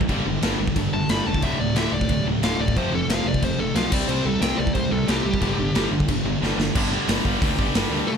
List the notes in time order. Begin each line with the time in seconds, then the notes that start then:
0.01 kick
0.09 G1 G2 D3 G3, kick, crash
0.25 G1 G2 D3
0.42 G1 G2 D3 G3, snare, crash
0.60 G1 G2 D3
0.67 kick
0.76 G1 G2 D3, kick, crash
0.93 G1 G2 D3 A5
1.09 G1 G2 D3 G3 B5, snare, crash
1.26 E1 G2 D3 G3 A5
1.34 kick
1.42 D1 D2 A2 D3 E5, kick, crash
1.59 D1 D2 A2 D5
1.75 D1 D2 A2 D3 E5, snare, crash
1.92 D1 D2 A2 D5
2.01 kick
2.09 D1 D2 A2, kick, crash
2.25 D1 D2 A2
2.42 D1 D2 A2 D3 F5, snare, crash
2.58 D1 D2 A2 D3 D5
2.68 kick
2.76 F1 F2 C3 F3 C5, kick, crash
2.91 F1 F2 C3 A4
3.08 F1 F2 C3 F3 F5, snare, crash
3.24 F1 F2 C3 D5
3.34 kick
3.42 F1 F2 C3 C5, kick, crash
3.58 F1 F2 C3 A4
3.75 B1 F2 C3 F3 F5, snare, crash
3.92 C2 C3 G3 C4 D5, kick, crash
4.08 C2 C3 G3 C4 C5, crash
4.25 C2 C3 G3 A4
4.41 C2 C3 G3 C4 G5, snare, crash
4.57 C2 C3 G3 D5
4.67 kick
4.74 C2 C3 G3 C5, kick, crash
4.91 C2 C3 G3 A4
5.08 C2 C3 G3 C4 G4, snare, crash
5.25 C2 C3 G3
5.34 kick
5.42 G1 G2 D3 G3, kick, crash
5.59 G1 G2 D3
5.75 G1 G2 D3 G3, snare, crash
5.91 G1 G2 D3
6.00 kick
6.08 G1 G2 D3, kick, crash
6.25 G1 G2 D3
6.41 G1 G2 D3 G3, snare
6.57 G1 G2 D3 G3, snare
6.75 G1 G2 D3 G3, kick, crash
6.93 G2 D3 G3
7.08 G1 G2 D3 G3, snare, open hi-hat
7.25 G1 G2 D3 G3, kick
7.42 D2 G2 D3 G3, kick, open hi-hat
7.59 G1 G2 D3 G3, kick
7.74 G1 G2 D3 G3, snare, open hi-hat
7.90 D2 G2 D3 G3
8.07 E2 B2 E3 A3 A4